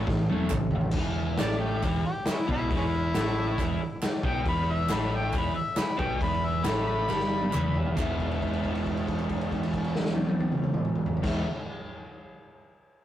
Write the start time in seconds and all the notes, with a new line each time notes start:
0.07 A2 E3, kick, snare
0.29 E1 A2 E3 A3, high tom
0.40 high tom
0.50 A1 A2 E3, kick, clap, mid tom
0.71 A1, floor tom
0.75 A2 E3
0.81 floor tom
0.91 E1, kick, crash
0.96 E2 E3
1.37 A1 A2 A3 D5, snare, clap, open hi-hat
1.60 G4
1.82 E1 E2 E3, kick, clap, open hi-hat
2.05 G4, muted overdriven electric guitar stroke
2.25 snare, clap, open hi-hat
2.31 G#3 C#4 E4
2.47 B1 B2 B3, kick
2.52 E4
2.70 E1 E2 E3, kick, open hi-hat
2.77 G#3 C#4 E4
3.13 A1 A2 A3, snare, clap, open hi-hat
3.58 E1 E2 E3, kick, clap, open hi-hat
3.82 muted fingered electric bass stroke, muted overdriven electric guitar stroke
4.02 snare, clap, open hi-hat
4.23 B1 B2 B3 G5, kick
4.46 E1 E2 E3 B5, kick, open hi-hat
4.71 E5
4.89 A1 A2 A3, snare, clap, open hi-hat
4.94 B5
5.16 G5
5.33 E1 E2 E3, kick, clap, open hi-hat
5.38 B5
5.55 E5, muted overdriven electric guitar stroke
5.76 B5, snare, clap, open hi-hat
5.97 B1 B2 B3 G5, kick
6.20 E1 E2 E3, kick, open hi-hat
6.25 B5
6.47 E5
6.64 A1 A2 A3 B5, snare, clap, open hi-hat
6.87 B5
7.06 G1 G2 G3, snare, clap
7.19 snare
7.41 high tom
7.51 E1 E2 E3, clap, mid tom
7.74 floor tom
7.86 floor tom
7.96 E1 E2 B2 E3 G#3 B3 E4, kick, clap, crash
8.19 kick, crash
8.31 crash
8.41 kick, crash
8.53 crash
8.64 kick, crash
8.75 crash
8.85 kick, crash
8.97 crash
9.07 kick, crash
9.19 crash
9.29 kick, crash
9.41 crash
9.51 kick, crash
9.63 crash
9.73 kick, crash
9.84 crash
9.95 snare
10.05 snare
10.16 high tom
10.29 high tom
10.40 high tom
10.52 mid tom
10.64 mid tom
10.74 mid tom
10.85 mid tom
10.95 mid tom
11.06 floor tom
11.17 floor tom
11.22 E1 E2 B2 E3 G#3 B3 E4, kick, snare, crash